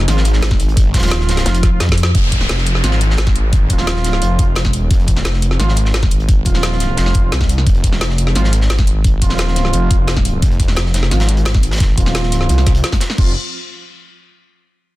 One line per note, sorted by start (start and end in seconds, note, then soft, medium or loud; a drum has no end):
0.00 2.11 C4 medium
0.00 2.11 D#4 medium
0.00 2.13 G#4 medium
0.08 0.93 G#1 loud
0.08 0.22 F3 loud
0.08 0.22 C4 medium
0.08 0.22 F4 loud
0.08 snare soft
0.08 closed hi-hat loud
0.17 snare medium
0.25 closed hi-hat medium
0.33 snare soft
0.42 snare loud
0.42 closed hi-hat loud
0.42 closed hi-hat medium
0.51 kick loud
0.51 snare soft
0.51 snare medium
0.59 closed hi-hat medium
0.69 closed hi-hat soft
0.77 kick loud
0.77 closed hi-hat loud
0.77 closed hi-hat medium
0.94 1.44 D#1 loud
0.94 1.70 F3 loud
0.94 1.70 C4 medium
0.94 1.70 F4 loud
0.94 kick medium
0.94 snare medium
0.94 closed hi-hat medium
0.98 snare medium
0.98 closed hi-hat medium
1.02 snare medium
1.02 snare soft
1.02 closed hi-hat medium
1.02 closed hi-hat soft
1.06 snare medium
1.06 closed hi-hat medium
1.11 snare loud
1.11 closed hi-hat loud
1.11 closed hi-hat medium
1.20 snare medium
1.29 snare loud
1.29 closed hi-hat medium
1.37 snare soft
1.37 snare loud
1.37 closed hi-hat soft
1.37 closed hi-hat medium
1.46 1.79 F1 loud
1.46 snare loud
1.46 closed hi-hat medium
1.46 closed hi-hat loud
1.54 closed hi-hat medium
1.54 closed hi-hat soft
1.63 kick loud
1.63 snare soft
1.63 closed hi-hat medium
1.72 1.80 F3 medium
1.72 1.80 C4 medium
1.72 1.80 F4 medium
1.80 2.13 F2 loud
1.80 snare loud
1.80 snare medium
1.80 closed hi-hat medium
1.80 closed hi-hat loud
1.89 kick medium
1.89 snare medium
1.97 closed hi-hat medium
2.03 snare loud
2.15 2.48 F1 loud
2.15 kick loud
2.15 closed hi-hat medium
2.15 downlifter medium
2.24 closed hi-hat soft
2.32 kick medium
2.32 closed hi-hat medium
2.32 closed hi-hat loud
2.41 snare soft
2.49 2.82 F1 loud
2.49 snare loud
2.49 closed hi-hat medium
2.58 snare medium
2.66 closed hi-hat medium
2.66 closed hi-hat loud
2.75 snare soft
2.84 3.69 G#1 loud
2.84 2.98 F3 medium
2.84 2.98 C4 medium
2.84 2.98 F4 loud
2.84 snare soft
2.84 closed hi-hat loud
2.84 closed hi-hat medium
2.91 snare medium
3.01 closed hi-hat medium
3.01 closed hi-hat loud
3.10 snare medium
3.18 snare loud
3.18 closed hi-hat medium
3.27 kick loud
3.27 snare soft
3.27 snare medium
3.36 closed hi-hat medium
3.53 kick loud
3.53 closed hi-hat medium
3.70 4.20 D#1 loud
3.70 4.45 F3 loud
3.70 4.45 C4 medium
3.70 4.45 F4 loud
3.70 kick medium
3.70 closed hi-hat medium
3.78 snare medium
3.78 snare soft
3.87 snare loud
3.87 closed hi-hat medium
3.96 snare medium
4.04 snare soft
4.04 closed hi-hat medium
4.13 snare soft
4.22 4.70 F1 loud
4.22 closed hi-hat medium
4.39 kick loud
4.39 closed hi-hat medium
4.39 closed hi-hat loud
4.47 4.61 F3 medium
4.47 4.61 C4 medium
4.47 4.61 F4 medium
4.55 snare loud
4.55 closed hi-hat medium
4.65 kick medium
4.65 snare medium
4.70 4.89 E1 loud
4.70 closed hi-hat medium
4.91 5.24 F1 loud
4.91 kick loud
4.91 closed hi-hat medium
4.99 closed hi-hat soft
5.07 kick medium
5.07 closed hi-hat medium
5.16 snare soft
5.25 5.58 F1 medium
5.25 snare loud
5.25 closed hi-hat medium
5.33 snare medium
5.42 closed hi-hat medium
5.51 snare soft
5.59 6.44 G#1 loud
5.59 5.73 F3 loud
5.59 5.73 C4 medium
5.59 5.73 F4 loud
5.59 snare soft
5.59 closed hi-hat medium
5.69 snare soft
5.76 closed hi-hat medium
5.85 snare soft
5.94 snare loud
5.94 closed hi-hat medium
6.02 kick loud
6.02 snare soft
6.02 snare medium
6.11 closed hi-hat medium
6.20 closed hi-hat soft
6.29 kick loud
6.29 closed hi-hat medium
6.45 6.96 D#1 loud
6.45 7.21 F3 loud
6.45 7.21 C4 medium
6.45 7.21 F4 loud
6.45 kick medium
6.45 closed hi-hat medium
6.54 snare medium
6.54 snare soft
6.63 snare loud
6.63 closed hi-hat medium
6.72 snare medium
6.80 snare soft
6.80 closed hi-hat medium
6.97 7.31 F1 loud
6.97 snare loud
6.97 closed hi-hat medium
7.06 snare medium
7.06 snare soft
7.14 kick loud
7.14 closed hi-hat medium
7.23 7.32 F3 medium
7.23 7.32 C4 medium
7.23 7.32 F4 medium
7.32 7.65 C2 medium
7.32 snare loud
7.32 closed hi-hat medium
7.41 kick medium
7.41 snare medium
7.49 closed hi-hat medium
7.58 snare soft
7.67 8.00 F1 loud
7.67 kick loud
7.67 closed hi-hat medium
7.75 closed hi-hat soft
7.84 kick medium
7.84 closed hi-hat medium
7.92 snare soft
8.01 8.34 F1 medium
8.01 snare loud
8.01 closed hi-hat medium
8.09 snare medium
8.18 closed hi-hat medium
8.27 snare soft
8.35 9.20 G#1 loud
8.35 8.49 F3 loud
8.35 8.49 C4 medium
8.35 8.49 F4 loud
8.35 snare soft
8.35 closed hi-hat medium
8.44 snare medium
8.53 closed hi-hat medium
8.61 snare medium
8.70 snare loud
8.70 closed hi-hat medium
8.79 kick loud
8.79 snare soft
8.79 snare medium
8.87 closed hi-hat medium
9.04 kick loud
9.04 closed hi-hat medium
9.22 9.72 D#1 medium
9.22 9.97 F3 loud
9.22 9.97 C4 medium
9.22 9.97 F4 loud
9.22 kick medium
9.22 closed hi-hat medium
9.29 snare medium
9.29 snare soft
9.38 snare loud
9.38 closed hi-hat medium
9.48 snare medium
9.56 snare soft
9.56 closed hi-hat medium
9.65 snare soft
9.73 10.41 F1 medium
9.73 closed hi-hat medium
9.90 kick loud
9.90 closed hi-hat medium
9.99 10.13 F3 medium
9.99 10.13 C4 medium
9.99 10.13 F4 medium
10.08 snare loud
10.08 closed hi-hat medium
10.17 kick medium
10.17 snare medium
10.25 closed hi-hat medium
10.42 10.75 F1 loud
10.42 kick loud
10.42 closed hi-hat medium
10.51 closed hi-hat soft
10.60 kick medium
10.60 closed hi-hat medium
10.68 snare soft
10.76 11.10 F1 medium
10.76 snare loud
10.76 closed hi-hat medium
10.86 snare medium
10.94 snare loud
10.94 closed hi-hat medium
10.94 closed hi-hat loud
11.03 snare soft
11.11 11.96 G#1 loud
11.11 11.25 F3 loud
11.11 11.25 C4 medium
11.11 11.25 F4 loud
11.11 snare soft
11.11 closed hi-hat medium
11.20 snare loud
11.20 closed hi-hat medium
11.28 snare soft
11.28 closed hi-hat loud
11.37 closed hi-hat medium
11.45 snare loud
11.45 closed hi-hat medium
11.54 kick loud
11.54 snare soft
11.54 snare medium
11.63 closed hi-hat medium
11.63 closed hi-hat loud
11.71 snare medium
11.71 closed hi-hat medium
11.76 snare medium
11.76 closed hi-hat medium
11.80 kick loud
11.80 snare loud
11.80 closed hi-hat medium
11.97 12.48 D#1 medium
11.97 12.73 F3 loud
11.97 12.73 C4 medium
11.97 12.73 F4 loud
11.97 kick medium
11.97 closed hi-hat loud
11.97 closed hi-hat medium
12.06 snare medium
12.06 snare soft
12.15 snare loud
12.15 closed hi-hat medium
12.23 snare medium
12.32 snare medium
12.32 closed hi-hat loud
12.32 closed hi-hat medium
12.41 snare soft
12.49 12.82 C2 loud
12.49 closed hi-hat medium
12.58 snare soft
12.58 closed hi-hat soft
12.66 kick loud
12.66 snare soft
12.66 closed hi-hat medium
12.66 closed hi-hat loud
12.75 12.89 F3 medium
12.75 12.89 C4 medium
12.75 12.89 F4 medium
12.75 closed hi-hat medium
12.84 snare loud
12.84 closed hi-hat medium
12.92 kick medium
12.92 snare medium
12.92 closed hi-hat medium
13.01 snare loud
13.01 closed hi-hat loud
13.01 closed hi-hat medium
13.09 snare medium
13.09 snare soft
13.18 13.34 F1 medium
13.18 13.31 F3 medium
13.18 13.31 C4 medium
13.18 13.31 F4 medium
13.18 kick loud
13.18 crash medium